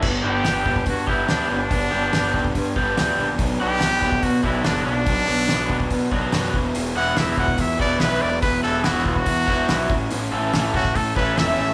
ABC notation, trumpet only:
X:1
M:4/4
L:1/8
Q:1/4=143
K:Glyd
V:1 name="Trumpet"
z G3 F E D D- | D4- D z3 | z G3 F E D D- | D4- D z3 |
z f e f e d B d | B A F F4- F- | F z2 F A B e2 |]